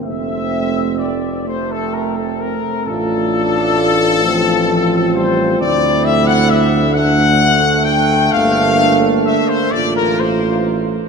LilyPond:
<<
  \new Staff \with { instrumentName = "Trumpet section" } { \time 6/8 \key f \major \tempo 4. = 43 e''4 d''8 c''16 a'16 bes'16 a'16 bes'8 | a'2~ a'8 c''8 | d''8 e''16 fis''16 e''8 fis''4 g''8 | f''4 e''16 c''16 d''16 bes'16 c''8 r8 | }
  \new Staff \with { instrumentName = "French horn section" } { \time 6/8 \key f \major c'4. c'4. | f'4. f'4. | e'4. d'4. | d'4. f'4. | }
  \new Staff \with { instrumentName = "Trombone" } { \time 6/8 \key f \major c'4. a4 r8 | d'4. c'4.~ | c'4. a4.~ | a2~ a8 r8 | }
  \new Staff \with { instrumentName = "Euphonium" } { \time 6/8 \key f \major a4 r8 a4.~ | a4. f8 f8 g8 | a2~ a8 r8 | bes4. a4. | }
  \new Staff \with { instrumentName = "Tuba" } { \clef bass \time 6/8 \key f \major f,,2~ f,,8 r8 | a,,2. | d,2. | g,,4 r8 a,,4. | }
>>